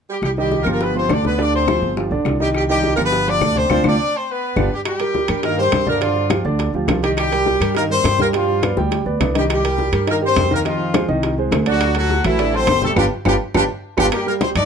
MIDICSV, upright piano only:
0, 0, Header, 1, 2, 480
1, 0, Start_track
1, 0, Key_signature, -3, "minor"
1, 0, Tempo, 289575
1, 380, Time_signature, 4, 2, 24, 8
1, 8056, Key_signature, -3, "minor"
1, 24289, End_track
2, 0, Start_track
2, 0, Title_t, "Upright piano"
2, 0, Program_c, 0, 0
2, 627, Note_on_c, 0, 51, 70
2, 629, Note_on_c, 0, 63, 68
2, 631, Note_on_c, 0, 75, 73
2, 1018, Note_off_c, 0, 51, 0
2, 1019, Note_off_c, 0, 63, 0
2, 1020, Note_off_c, 0, 75, 0
2, 1113, Note_on_c, 0, 53, 68
2, 1123, Note_on_c, 0, 65, 68
2, 1126, Note_on_c, 0, 67, 65
2, 1501, Note_off_c, 0, 53, 0
2, 1507, Note_off_c, 0, 65, 0
2, 1509, Note_off_c, 0, 67, 0
2, 1579, Note_on_c, 0, 53, 64
2, 1586, Note_on_c, 0, 65, 60
2, 1592, Note_on_c, 0, 67, 59
2, 1776, Note_off_c, 0, 53, 0
2, 1780, Note_off_c, 0, 65, 0
2, 1784, Note_off_c, 0, 67, 0
2, 1800, Note_on_c, 0, 50, 71
2, 1804, Note_on_c, 0, 62, 71
2, 1808, Note_on_c, 0, 74, 66
2, 2201, Note_off_c, 0, 50, 0
2, 2204, Note_off_c, 0, 62, 0
2, 2206, Note_off_c, 0, 74, 0
2, 2285, Note_on_c, 0, 50, 76
2, 2288, Note_on_c, 0, 62, 74
2, 2296, Note_on_c, 0, 74, 72
2, 2684, Note_off_c, 0, 50, 0
2, 2686, Note_off_c, 0, 62, 0
2, 2691, Note_off_c, 0, 74, 0
2, 2772, Note_on_c, 0, 53, 61
2, 2775, Note_on_c, 0, 68, 61
2, 2779, Note_on_c, 0, 65, 58
2, 3168, Note_off_c, 0, 53, 0
2, 3170, Note_off_c, 0, 68, 0
2, 3172, Note_off_c, 0, 65, 0
2, 3260, Note_on_c, 0, 53, 59
2, 3267, Note_on_c, 0, 65, 60
2, 3273, Note_on_c, 0, 67, 62
2, 3456, Note_off_c, 0, 53, 0
2, 3460, Note_off_c, 0, 65, 0
2, 3464, Note_off_c, 0, 67, 0
2, 3509, Note_on_c, 0, 50, 73
2, 3512, Note_on_c, 0, 62, 70
2, 3512, Note_on_c, 0, 74, 75
2, 3898, Note_off_c, 0, 50, 0
2, 3900, Note_off_c, 0, 62, 0
2, 3900, Note_off_c, 0, 74, 0
2, 3983, Note_on_c, 0, 63, 76
2, 3985, Note_on_c, 0, 51, 71
2, 3987, Note_on_c, 0, 75, 74
2, 4374, Note_off_c, 0, 63, 0
2, 4376, Note_off_c, 0, 51, 0
2, 4377, Note_off_c, 0, 75, 0
2, 4468, Note_on_c, 0, 51, 81
2, 4472, Note_on_c, 0, 63, 76
2, 4482, Note_on_c, 0, 75, 76
2, 4857, Note_off_c, 0, 51, 0
2, 4859, Note_off_c, 0, 63, 0
2, 4865, Note_off_c, 0, 75, 0
2, 4926, Note_on_c, 0, 53, 69
2, 4929, Note_on_c, 0, 67, 67
2, 4931, Note_on_c, 0, 65, 71
2, 5324, Note_off_c, 0, 53, 0
2, 5326, Note_off_c, 0, 67, 0
2, 5327, Note_off_c, 0, 65, 0
2, 5427, Note_on_c, 0, 53, 67
2, 5427, Note_on_c, 0, 65, 68
2, 5432, Note_on_c, 0, 67, 62
2, 5620, Note_off_c, 0, 53, 0
2, 5620, Note_off_c, 0, 65, 0
2, 5623, Note_off_c, 0, 67, 0
2, 5651, Note_on_c, 0, 50, 71
2, 5656, Note_on_c, 0, 62, 67
2, 5667, Note_on_c, 0, 74, 74
2, 6047, Note_off_c, 0, 50, 0
2, 6050, Note_off_c, 0, 62, 0
2, 6056, Note_off_c, 0, 74, 0
2, 6136, Note_on_c, 0, 62, 100
2, 6142, Note_on_c, 0, 60, 96
2, 6145, Note_on_c, 0, 65, 97
2, 6290, Note_off_c, 0, 62, 0
2, 6294, Note_off_c, 0, 60, 0
2, 6295, Note_off_c, 0, 65, 0
2, 6378, Note_on_c, 0, 60, 89
2, 6378, Note_on_c, 0, 62, 83
2, 6381, Note_on_c, 0, 65, 92
2, 6531, Note_off_c, 0, 60, 0
2, 6531, Note_off_c, 0, 62, 0
2, 6533, Note_off_c, 0, 65, 0
2, 7567, Note_on_c, 0, 65, 81
2, 7569, Note_on_c, 0, 67, 88
2, 7572, Note_on_c, 0, 62, 87
2, 7724, Note_off_c, 0, 65, 0
2, 7725, Note_off_c, 0, 67, 0
2, 7727, Note_off_c, 0, 62, 0
2, 8290, Note_on_c, 0, 55, 66
2, 8296, Note_on_c, 0, 67, 65
2, 8299, Note_on_c, 0, 70, 70
2, 8686, Note_off_c, 0, 55, 0
2, 8689, Note_off_c, 0, 67, 0
2, 8691, Note_off_c, 0, 70, 0
2, 8767, Note_on_c, 0, 67, 66
2, 8768, Note_on_c, 0, 55, 70
2, 8774, Note_on_c, 0, 70, 67
2, 8967, Note_off_c, 0, 67, 0
2, 8968, Note_off_c, 0, 55, 0
2, 8971, Note_off_c, 0, 70, 0
2, 9000, Note_on_c, 0, 51, 70
2, 9005, Note_on_c, 0, 63, 71
2, 9017, Note_on_c, 0, 75, 70
2, 9203, Note_off_c, 0, 51, 0
2, 9206, Note_off_c, 0, 63, 0
2, 9213, Note_off_c, 0, 75, 0
2, 9247, Note_on_c, 0, 67, 63
2, 9249, Note_on_c, 0, 55, 65
2, 9256, Note_on_c, 0, 70, 66
2, 9644, Note_off_c, 0, 67, 0
2, 9645, Note_off_c, 0, 55, 0
2, 9649, Note_off_c, 0, 70, 0
2, 9722, Note_on_c, 0, 50, 73
2, 9729, Note_on_c, 0, 62, 81
2, 9731, Note_on_c, 0, 74, 72
2, 9924, Note_off_c, 0, 50, 0
2, 9928, Note_off_c, 0, 62, 0
2, 9930, Note_off_c, 0, 74, 0
2, 9970, Note_on_c, 0, 62, 73
2, 9975, Note_on_c, 0, 50, 80
2, 9981, Note_on_c, 0, 74, 77
2, 10366, Note_off_c, 0, 62, 0
2, 10369, Note_off_c, 0, 50, 0
2, 10372, Note_off_c, 0, 74, 0
2, 10453, Note_on_c, 0, 53, 61
2, 10453, Note_on_c, 0, 65, 66
2, 10459, Note_on_c, 0, 67, 64
2, 10650, Note_off_c, 0, 53, 0
2, 10651, Note_off_c, 0, 65, 0
2, 10654, Note_off_c, 0, 67, 0
2, 10687, Note_on_c, 0, 50, 77
2, 10694, Note_on_c, 0, 62, 79
2, 10700, Note_on_c, 0, 74, 81
2, 11084, Note_off_c, 0, 50, 0
2, 11088, Note_off_c, 0, 62, 0
2, 11092, Note_off_c, 0, 74, 0
2, 11180, Note_on_c, 0, 53, 66
2, 11184, Note_on_c, 0, 67, 67
2, 11185, Note_on_c, 0, 65, 67
2, 11375, Note_off_c, 0, 53, 0
2, 11378, Note_off_c, 0, 65, 0
2, 11378, Note_off_c, 0, 67, 0
2, 11416, Note_on_c, 0, 53, 65
2, 11417, Note_on_c, 0, 65, 67
2, 11423, Note_on_c, 0, 67, 66
2, 11613, Note_off_c, 0, 53, 0
2, 11613, Note_off_c, 0, 65, 0
2, 11617, Note_off_c, 0, 67, 0
2, 11656, Note_on_c, 0, 51, 81
2, 11657, Note_on_c, 0, 63, 78
2, 11665, Note_on_c, 0, 75, 77
2, 12050, Note_off_c, 0, 51, 0
2, 12050, Note_off_c, 0, 63, 0
2, 12055, Note_off_c, 0, 75, 0
2, 12129, Note_on_c, 0, 55, 66
2, 12133, Note_on_c, 0, 67, 72
2, 12139, Note_on_c, 0, 70, 66
2, 12526, Note_off_c, 0, 55, 0
2, 12528, Note_off_c, 0, 67, 0
2, 12532, Note_off_c, 0, 70, 0
2, 12611, Note_on_c, 0, 55, 75
2, 12622, Note_on_c, 0, 67, 74
2, 12626, Note_on_c, 0, 70, 70
2, 12810, Note_off_c, 0, 55, 0
2, 12816, Note_off_c, 0, 67, 0
2, 12819, Note_off_c, 0, 70, 0
2, 12860, Note_on_c, 0, 51, 69
2, 12867, Note_on_c, 0, 75, 74
2, 12869, Note_on_c, 0, 63, 71
2, 13055, Note_off_c, 0, 51, 0
2, 13060, Note_off_c, 0, 75, 0
2, 13061, Note_off_c, 0, 63, 0
2, 13106, Note_on_c, 0, 55, 70
2, 13111, Note_on_c, 0, 67, 67
2, 13117, Note_on_c, 0, 70, 67
2, 13496, Note_off_c, 0, 55, 0
2, 13499, Note_off_c, 0, 67, 0
2, 13503, Note_off_c, 0, 70, 0
2, 13580, Note_on_c, 0, 55, 79
2, 13582, Note_on_c, 0, 67, 74
2, 13591, Note_on_c, 0, 79, 77
2, 13776, Note_off_c, 0, 55, 0
2, 13777, Note_off_c, 0, 67, 0
2, 13782, Note_off_c, 0, 79, 0
2, 13818, Note_on_c, 0, 67, 76
2, 13820, Note_on_c, 0, 55, 77
2, 13831, Note_on_c, 0, 79, 79
2, 14211, Note_off_c, 0, 67, 0
2, 14213, Note_off_c, 0, 55, 0
2, 14219, Note_off_c, 0, 79, 0
2, 14297, Note_on_c, 0, 71, 65
2, 14299, Note_on_c, 0, 59, 64
2, 14304, Note_on_c, 0, 74, 62
2, 14494, Note_off_c, 0, 71, 0
2, 14495, Note_off_c, 0, 59, 0
2, 14498, Note_off_c, 0, 74, 0
2, 14539, Note_on_c, 0, 55, 84
2, 14544, Note_on_c, 0, 67, 83
2, 14556, Note_on_c, 0, 79, 83
2, 14932, Note_off_c, 0, 55, 0
2, 14935, Note_off_c, 0, 67, 0
2, 14942, Note_off_c, 0, 79, 0
2, 15004, Note_on_c, 0, 59, 65
2, 15014, Note_on_c, 0, 71, 66
2, 15020, Note_on_c, 0, 74, 67
2, 15207, Note_off_c, 0, 59, 0
2, 15213, Note_off_c, 0, 71, 0
2, 15216, Note_off_c, 0, 74, 0
2, 15248, Note_on_c, 0, 59, 61
2, 15250, Note_on_c, 0, 71, 61
2, 15254, Note_on_c, 0, 74, 62
2, 15449, Note_off_c, 0, 59, 0
2, 15451, Note_off_c, 0, 71, 0
2, 15453, Note_off_c, 0, 74, 0
2, 15483, Note_on_c, 0, 51, 74
2, 15494, Note_on_c, 0, 63, 75
2, 15499, Note_on_c, 0, 75, 76
2, 15883, Note_off_c, 0, 51, 0
2, 15890, Note_off_c, 0, 63, 0
2, 15893, Note_off_c, 0, 75, 0
2, 15981, Note_on_c, 0, 55, 67
2, 15991, Note_on_c, 0, 67, 65
2, 15991, Note_on_c, 0, 70, 66
2, 16374, Note_off_c, 0, 55, 0
2, 16380, Note_off_c, 0, 67, 0
2, 16380, Note_off_c, 0, 70, 0
2, 16451, Note_on_c, 0, 55, 66
2, 16459, Note_on_c, 0, 67, 70
2, 16465, Note_on_c, 0, 70, 72
2, 16652, Note_off_c, 0, 55, 0
2, 16656, Note_off_c, 0, 67, 0
2, 16660, Note_off_c, 0, 70, 0
2, 16691, Note_on_c, 0, 51, 70
2, 16694, Note_on_c, 0, 63, 70
2, 16699, Note_on_c, 0, 75, 72
2, 16891, Note_off_c, 0, 51, 0
2, 16893, Note_off_c, 0, 63, 0
2, 16896, Note_off_c, 0, 75, 0
2, 16932, Note_on_c, 0, 55, 67
2, 16938, Note_on_c, 0, 67, 69
2, 16941, Note_on_c, 0, 70, 64
2, 17329, Note_off_c, 0, 55, 0
2, 17333, Note_off_c, 0, 67, 0
2, 17334, Note_off_c, 0, 70, 0
2, 17419, Note_on_c, 0, 51, 79
2, 17421, Note_on_c, 0, 63, 77
2, 17427, Note_on_c, 0, 75, 80
2, 17616, Note_off_c, 0, 51, 0
2, 17617, Note_off_c, 0, 63, 0
2, 17621, Note_off_c, 0, 75, 0
2, 17665, Note_on_c, 0, 51, 77
2, 17665, Note_on_c, 0, 63, 79
2, 17667, Note_on_c, 0, 75, 76
2, 18056, Note_off_c, 0, 51, 0
2, 18057, Note_off_c, 0, 63, 0
2, 18058, Note_off_c, 0, 75, 0
2, 18131, Note_on_c, 0, 68, 66
2, 18134, Note_on_c, 0, 56, 68
2, 18141, Note_on_c, 0, 72, 68
2, 18332, Note_off_c, 0, 68, 0
2, 18333, Note_off_c, 0, 56, 0
2, 18337, Note_off_c, 0, 72, 0
2, 18375, Note_on_c, 0, 51, 79
2, 18376, Note_on_c, 0, 63, 79
2, 18378, Note_on_c, 0, 75, 81
2, 18771, Note_off_c, 0, 51, 0
2, 18772, Note_off_c, 0, 63, 0
2, 18773, Note_off_c, 0, 75, 0
2, 18870, Note_on_c, 0, 56, 68
2, 18874, Note_on_c, 0, 68, 68
2, 18880, Note_on_c, 0, 72, 72
2, 19063, Note_off_c, 0, 56, 0
2, 19065, Note_off_c, 0, 68, 0
2, 19069, Note_off_c, 0, 72, 0
2, 19106, Note_on_c, 0, 56, 67
2, 19114, Note_on_c, 0, 68, 63
2, 19116, Note_on_c, 0, 72, 67
2, 19300, Note_off_c, 0, 56, 0
2, 19305, Note_off_c, 0, 68, 0
2, 19306, Note_off_c, 0, 72, 0
2, 19338, Note_on_c, 0, 50, 80
2, 19343, Note_on_c, 0, 62, 78
2, 19353, Note_on_c, 0, 74, 83
2, 19733, Note_off_c, 0, 50, 0
2, 19735, Note_off_c, 0, 62, 0
2, 19742, Note_off_c, 0, 74, 0
2, 19824, Note_on_c, 0, 54, 65
2, 19826, Note_on_c, 0, 66, 71
2, 19830, Note_on_c, 0, 69, 68
2, 20216, Note_off_c, 0, 54, 0
2, 20217, Note_off_c, 0, 66, 0
2, 20219, Note_off_c, 0, 69, 0
2, 20301, Note_on_c, 0, 54, 70
2, 20313, Note_on_c, 0, 66, 72
2, 20318, Note_on_c, 0, 69, 68
2, 20498, Note_off_c, 0, 54, 0
2, 20505, Note_off_c, 0, 66, 0
2, 20508, Note_off_c, 0, 69, 0
2, 20537, Note_on_c, 0, 50, 73
2, 20543, Note_on_c, 0, 62, 74
2, 20546, Note_on_c, 0, 74, 67
2, 20735, Note_off_c, 0, 50, 0
2, 20739, Note_off_c, 0, 62, 0
2, 20740, Note_off_c, 0, 74, 0
2, 20770, Note_on_c, 0, 54, 65
2, 20780, Note_on_c, 0, 66, 63
2, 20786, Note_on_c, 0, 69, 67
2, 21167, Note_off_c, 0, 54, 0
2, 21173, Note_off_c, 0, 66, 0
2, 21177, Note_off_c, 0, 69, 0
2, 21256, Note_on_c, 0, 55, 79
2, 21257, Note_on_c, 0, 67, 83
2, 21269, Note_on_c, 0, 79, 79
2, 21454, Note_off_c, 0, 55, 0
2, 21455, Note_off_c, 0, 67, 0
2, 21462, Note_off_c, 0, 79, 0
2, 21499, Note_on_c, 0, 71, 95
2, 21500, Note_on_c, 0, 65, 98
2, 21505, Note_on_c, 0, 67, 97
2, 21652, Note_off_c, 0, 71, 0
2, 21654, Note_off_c, 0, 65, 0
2, 21656, Note_off_c, 0, 67, 0
2, 21974, Note_on_c, 0, 65, 89
2, 21981, Note_on_c, 0, 71, 89
2, 21983, Note_on_c, 0, 67, 89
2, 22129, Note_off_c, 0, 65, 0
2, 22134, Note_off_c, 0, 71, 0
2, 22135, Note_off_c, 0, 67, 0
2, 22453, Note_on_c, 0, 67, 84
2, 22454, Note_on_c, 0, 71, 85
2, 22455, Note_on_c, 0, 65, 85
2, 22609, Note_off_c, 0, 67, 0
2, 22609, Note_off_c, 0, 71, 0
2, 22610, Note_off_c, 0, 65, 0
2, 23154, Note_on_c, 0, 67, 89
2, 23157, Note_on_c, 0, 65, 85
2, 23163, Note_on_c, 0, 71, 91
2, 23317, Note_off_c, 0, 67, 0
2, 23318, Note_off_c, 0, 65, 0
2, 23322, Note_off_c, 0, 71, 0
2, 23406, Note_on_c, 0, 58, 73
2, 23411, Note_on_c, 0, 70, 74
2, 23419, Note_on_c, 0, 82, 75
2, 23607, Note_off_c, 0, 58, 0
2, 23610, Note_off_c, 0, 70, 0
2, 23615, Note_off_c, 0, 82, 0
2, 23643, Note_on_c, 0, 55, 73
2, 23646, Note_on_c, 0, 67, 74
2, 23654, Note_on_c, 0, 79, 77
2, 24041, Note_off_c, 0, 55, 0
2, 24042, Note_off_c, 0, 67, 0
2, 24047, Note_off_c, 0, 79, 0
2, 24120, Note_on_c, 0, 63, 71
2, 24134, Note_on_c, 0, 75, 81
2, 24137, Note_on_c, 0, 87, 74
2, 24289, Note_off_c, 0, 63, 0
2, 24289, Note_off_c, 0, 75, 0
2, 24289, Note_off_c, 0, 87, 0
2, 24289, End_track
0, 0, End_of_file